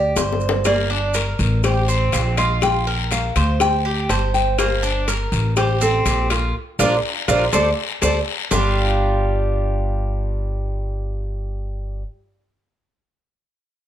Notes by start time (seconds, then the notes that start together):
Already playing: D2 G4 D5
0.16 G1 C5, cowbell, high bongo, maracas
0.33 low bongo
0.40 maracas
0.49 low bongo
0.65 A#3 D5, cowbell, long guiro, maracas
0.90 D4
1.14 A#4, cowbell, short guiro, maracas
1.39 A1, short guiro, maracas
1.64 G4 C5, cowbell, long guiro, maracas
1.88 C4, maracas
2.12 A#1 F5, cowbell, short guiro, maracas
2.37 F4 D#5, cowbell, short guiro, maracas
2.61 G5, cowbell, long guiro, maracas
2.87 A#4
3.11 F5, cowbell, short guiro, maracas
3.36 D2 C5, cowbell, short guiro, maracas
3.60 G5, cowbell, long guiro, maracas
3.85 G4
4.09 G1 C5 A5, cowbell, short guiro, maracas
4.34 G5, short guiro, maracas
4.58 A#3 C5, cowbell, long guiro, maracas
4.83 D4, maracas
5.08 A#4, cowbell, short guiro, maracas
5.32 A1, short guiro, maracas
5.57 G4 C5, cowbell, long guiro, maracas
5.81 C4 A4, maracas
6.05 A#1 G4, cowbell, short guiro, maracas
6.30 F4 A#4, cowbell, short guiro, maracas
6.79 A#1 D4 F4 A#4 C5 D5, cowbell, long guiro, maracas
7.28 A#1 D4 F4 A#4 C5 D5, cowbell, long guiro, maracas
7.52 D2 A4 C5 D5, cowbell, long guiro, maracas
8.02 D2 A4 C5 D5, cowbell, long guiro, maracas
8.51 G1 G3 D4 F4, low bongo, long guiro, maracas